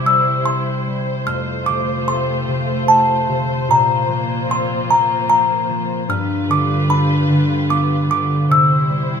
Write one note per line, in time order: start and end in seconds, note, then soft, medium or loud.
0.00 1.32 C3 medium
0.00 1.23 G3 medium
0.00 0.44 A#3 medium
0.00 1.25 E4 medium
0.00 1.33 E4 soft
0.00 6.06 C5 medium
0.05 0.85 G3 soft
0.05 0.47 E6 medium
0.45 2.07 C4 soft
0.45 1.02 C6 medium
0.87 1.32 G3 soft
1.26 3.74 F2 medium
1.26 3.67 A3 medium
1.26 3.67 F4 medium
1.26 1.64 F6 medium
1.66 2.47 C3 soft
1.66 2.08 D6 medium
2.08 4.48 C4 soft
2.08 2.91 C6 medium
2.48 3.28 C3 soft
2.88 3.75 A3 soft
2.88 3.72 A5 medium
3.29 3.74 C3 soft
3.68 6.15 A#2 medium
3.68 6.07 A#3 medium
3.68 6.07 F4 medium
3.68 4.53 A#5 medium
4.08 4.87 F3 soft
4.48 7.48 C4 medium
4.48 4.88 C6 medium
4.88 5.68 F3 soft
4.88 5.28 A#5 medium
5.28 7.74 A#3 medium
5.28 5.86 A#5 medium
5.69 6.15 F3 soft
6.08 8.55 G2 medium
6.08 8.47 G3 medium
6.08 8.47 F4 medium
6.08 8.47 B4 medium
6.08 6.51 F6 medium
6.48 7.27 D3 soft
6.48 6.69 D6 medium
6.88 9.20 D4 medium
6.88 7.72 B5 medium
7.29 8.08 D3 soft
7.68 8.54 B3 medium
7.68 7.88 D6 medium
8.09 8.55 D3 soft
8.09 8.29 D6 medium
8.48 9.20 C3 medium
8.48 9.20 G3 medium
8.48 9.20 E4 medium
8.48 9.20 C5 medium
8.48 9.20 E6 medium
8.89 9.20 G3 soft